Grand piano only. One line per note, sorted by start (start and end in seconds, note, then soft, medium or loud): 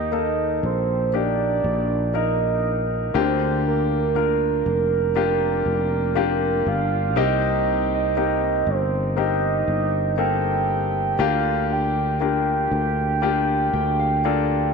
0.00 0.59 D#3 medium
0.00 0.12 A#3 medium
0.00 0.13 D#4 medium
0.00 1.15 G4 medium
0.12 1.08 A#3 medium
0.12 1.09 D#4 medium
0.12 1.09 A4 medium
1.13 2.09 A#3 medium
1.13 2.10 D4 medium
1.13 2.10 D#4 medium
1.13 2.10 G4 medium
2.14 3.10 A#3 medium
2.14 3.10 D#4 medium
2.14 3.10 A#4 medium
3.14 4.62 D3 medium
3.14 4.10 A#3 medium
3.14 3.21 C4 medium
3.14 4.11 F4 medium
3.14 4.11 G4 loud
3.21 4.14 D4 medium
4.15 5.11 A#3 medium
4.15 5.11 D4 medium
4.15 5.11 F4 medium
4.15 5.11 A#4 medium
5.15 6.11 A#3 medium
5.15 6.11 D4 medium
5.15 6.11 F4 medium
5.15 6.11 G4 medium
6.15 7.11 A#3 medium
6.15 7.11 D4 medium
6.15 7.11 F4 medium
6.15 7.12 G4 loud
7.16 8.63 C3 medium
7.16 8.11 A#3 loud
7.16 8.12 C4 medium
7.16 8.12 D#4 medium
7.16 8.12 G4 loud
8.16 9.12 A#3 medium
8.16 9.12 C4 medium
8.16 9.12 D#4 medium
8.16 9.13 G4 medium
9.16 10.13 A#3 medium
9.16 10.13 C4 medium
9.16 10.13 D#4 medium
9.16 10.13 G4 medium
10.18 11.14 A#3 medium
10.18 11.14 C4 medium
10.18 11.14 D#4 medium
10.18 11.14 A4 medium
11.19 12.68 D3 medium
11.19 12.15 A#3 medium
11.19 12.16 D4 medium
11.19 12.16 F4 medium
11.19 12.16 G4 loud
12.21 13.18 A#3 medium
12.21 13.18 D4 medium
12.21 13.18 F4 medium
12.21 13.18 G4 medium
13.22 14.20 A#3 medium
13.22 14.20 D4 medium
13.22 14.20 F4 medium
13.22 14.20 G4 medium
13.74 13.98 G5 medium
14.00 14.24 F5 medium
14.25 14.74 A#3 medium
14.25 14.74 D4 medium
14.25 14.74 F4 medium
14.25 14.74 A4 medium
14.25 14.73 D5 medium